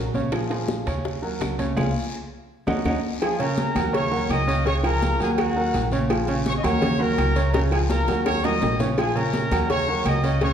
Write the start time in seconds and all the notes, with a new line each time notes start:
Already playing: A#1
0.14 C#3 C#4 C#5, high bongo, high conga, short guiro
0.32 F3 F4 G#4, high bongo, high conga, high timbale, long guiro, claves
0.50 F3 F4 G#4, high bongo, high timbale
0.68 high bongo, high conga, short guiro
0.86 D#2 C#3 C#4 C#5, high conga, high timbale, short guiro, claves
1.05 high bongo, high conga, long guiro
1.22 F#3 F#4 A#4, high bongo, high conga
1.41 C#2, high bongo, low bongo, high conga, high timbale, short guiro, claves
1.59 C#3 C#4 C#5, high bongo, high conga, high timbale, short guiro
1.77 C#2 C#4 F4 G#4, low bongo, high conga, high timbale, long guiro, claves
2.67 D#2 C#4 D#4 F#4, low bongo, high conga, high timbale, long guiro, claves
2.84 D#2 C#4 D#4 F#4, low bongo, high conga, high timbale, long guiro, claves
3.21 F3 F4 G#4 G#5, cowbell, high conga, low agogo, long guiro, claves
3.39 C#3 C#4 A#4 C#5 A#5, high conga, low agogo
3.58 cowbell, high conga, short guiro
3.75 D#2 F#3 F#4 A#4, cowbell, high conga, low conga, low agogo, short guiro, claves
3.93 C#3 C#4 C#5 C#6, cowbell, high conga, low agogo, long guiro
4.11 F#3 F#4 A#4, high conga
4.29 C#2 D#5 D#6, cowbell, high conga, low timbale, low agogo, short guiro, claves
4.48 C#3 C#4 C#5, cowbell, high conga, short guiro
4.65 C#3 C#4 C#5 C#6, cowbell, high conga, low agogo, long guiro
4.83 F3 F4 G#4 A#4 A#5, high conga, low agogo, claves
5.02 cowbell, high conga, short guiro
5.20 D#2 F#3 F#4 G#4 A#4 G#5, high conga, low agogo, short guiro
5.38 F#4 F#5, cowbell, high conga, low agogo, long guiro, claves
5.56 F#3 F#4 A#4, high conga
5.74 A#1, cowbell, high conga, low timbale, low agogo, short guiro
5.91 C#3 C#4 C#5, high conga, short guiro
6.10 F3 F4 G#4, cowbell, high conga, low agogo, long guiro, claves
6.28 C#3 C#4 C#5, high conga, low agogo
6.46 C#5 C#6, cowbell, high conga, short guiro
6.57 D#5
6.64 D#2 F#3 F#4 A#4 C#5 C#6, cowbell, high conga, low conga, low agogo, short guiro, claves
6.81 C#3 C#4 C#5, cowbell, high conga, low conga, low agogo, long guiro
6.99 F#3 F#4 A#4 A#5, high conga
7.18 C#2, cowbell, high conga, low timbale, low agogo, short guiro, claves
7.36 C#3 C#4 C#5, cowbell, high conga, short guiro
7.53 C#3 C#4 A#4 C#5 A#5, cowbell, high bongo, high conga, low agogo, long guiro
7.71 F3 F4 G#4 G#5, high conga, low agogo, claves
7.89 A#4 A#5, cowbell, high bongo, high conga, short guiro
8.08 D#2 F#3 F#4 A#4, high bongo, high conga, low agogo, short guiro
8.24 C#5 C#6, cowbell, low bongo, high conga, high timbale, low agogo, long guiro, claves
8.43 F#3 F#4 A#4 D#5 D#6, low bongo, high conga, low timbale
8.61 A#1, cowbell, low bongo, high conga, low timbale, low agogo, short guiro
8.79 C#3 C#4 C#5, low bongo, high conga, low timbale, short guiro
8.97 F3 F4 G#4 G#5, cowbell, high conga, low agogo, long guiro, claves
9.15 C#3 C#4 A#4 C#5 A#5, high conga, low agogo
9.34 cowbell, high conga, short guiro
9.51 D#2 F#3 F#4 A#4, cowbell, high conga, low conga, low agogo, short guiro, claves
9.69 C#3 C#4 C#5 C#6, cowbell, high conga, low agogo, long guiro
9.88 F#3 F#4 A#4, high conga
10.05 C#2 D#5 D#6, cowbell, high conga, low agogo, short guiro, claves
10.23 C#3 C#4 C#5, cowbell, high conga, short guiro
10.41 C#3 C#4 C#5 C#6, cowbell, high conga, low agogo, long guiro